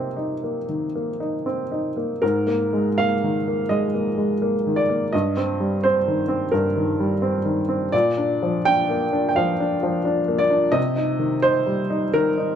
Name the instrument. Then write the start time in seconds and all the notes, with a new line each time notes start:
upright piano
Already playing: C3 A#3 C4 D#4 G4
0.16 D#4
0.43 A#3
0.69 D#3
0.95 A#3
1.20 D#4
1.46 C4
1.72 D#4
1.97 A#3
2.22 G#2 A#4
2.47 A#3
2.73 G#3
2.98 A#3 F5
3.24 D#3
3.48 A#3
3.69 G#3 D#5
3.94 A#3
4.18 G#3
4.42 A#3
4.67 D#3
4.76 D5
4.90 A#3
5.13 G2 D#5
5.37 C4
5.60 G3
5.83 C4 C5
6.08 D#3
6.28 C4
6.52 G2 A#4
6.76 D#3
7.00 G3
7.22 C4
7.45 D#3
7.69 C4
7.92 A#2 D5
8.18 D4
8.43 F3
8.65 D4 G5
8.90 A#3
9.13 D4
9.29 G5
9.36 F3 F5
9.60 D4
9.83 F3
10.05 D4
10.28 A#3
10.38 D5
10.50 D4
10.72 C3 D#5
10.96 D#4
11.19 D#3
11.42 D#4 C5
11.67 G3
11.90 D#4
12.14 D#3 A#4
12.37 D#4